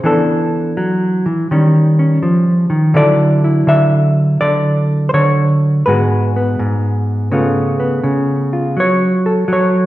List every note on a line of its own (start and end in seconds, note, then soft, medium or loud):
0.04 1.25 E3 medium
0.04 0.77 B3 medium
0.04 1.47 D4 soft
0.04 2.95 A4 medium
0.77 1.26 F#3 medium
1.26 1.50 E3 medium
1.51 2.22 D#3 medium
1.51 2.93 G3 soft
1.51 1.98 C#4 soft
1.99 2.93 C#4 soft
2.23 2.69 F3 medium
2.70 2.95 D#3 medium
2.94 3.66 D3 medium
2.94 5.86 F#3 soft
2.94 3.43 E4 soft
2.94 5.84 A4 soft
2.94 3.68 D5 loud
3.44 5.84 E4 soft
3.67 4.40 D3 medium
3.67 4.40 E5 loud
4.41 5.13 D3 medium
4.41 5.09 D5 loud
5.09 5.14 C5 medium
5.14 5.83 D3 medium
5.14 5.85 C#5 medium
5.86 6.58 G#2 medium
5.86 7.30 G#3 medium
5.86 6.35 B3 soft
5.86 7.30 F#4 soft
5.86 8.77 B4 medium
6.36 7.32 B3 soft
6.59 7.32 G#2 medium
7.32 8.02 C#3 medium
7.32 8.74 A3 soft
7.32 7.78 B3 soft
7.32 8.52 F4 soft
7.80 8.77 B3 soft
8.04 8.77 C#3 medium
8.53 8.74 F4 soft
8.77 9.47 F#3 medium
8.77 9.51 C#5 medium
9.26 9.86 A4 soft
9.48 9.86 F#3 medium
9.53 9.86 C#5 medium